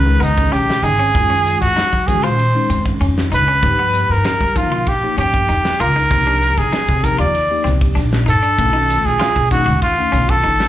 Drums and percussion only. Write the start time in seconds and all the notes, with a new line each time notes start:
0.22 snare, hi-hat pedal, ride
0.38 kick, ride
0.53 ride
0.70 snare
0.84 hi-hat pedal, ride
1.00 ride
1.15 kick, ride
1.46 hi-hat pedal, ride
1.62 kick, snare, ride
1.77 snare, ride
1.93 kick
2.08 kick, hi-hat pedal, ride
2.25 snare, ride
2.39 ride
2.70 hi-hat pedal, ride
2.85 kick, ride
3.01 ride
3.18 snare
3.32 hi-hat pedal, ride
3.48 ride
3.63 kick, ride
3.93 hi-hat pedal, ride
4.11 snare
4.24 snare, ride
4.41 kick
4.56 kick, hi-hat pedal, ride
4.87 kick, ride
5.18 hi-hat pedal, ride
5.34 kick, ride
5.49 snare, ride
5.65 snare
5.80 hi-hat pedal, ride
5.96 ride
6.11 kick, ride
6.42 hi-hat pedal, ride
6.58 kick, ride
6.73 snare, ride
6.89 kick
7.04 kick, hi-hat pedal, ride
7.20 ride
7.35 ride
7.66 snare, hi-hat pedal, ride
7.81 kick, ride
7.97 snare, ride
8.13 snare
8.28 hi-hat pedal, ride
8.44 ride
8.59 kick, ride
8.90 hi-hat pedal, ride
9.07 snare
9.20 snare, ride
9.36 kick
9.51 kick, hi-hat pedal, ride
9.82 kick, ride
10.13 hi-hat pedal, ride
10.29 kick, ride
10.44 ride
10.60 snare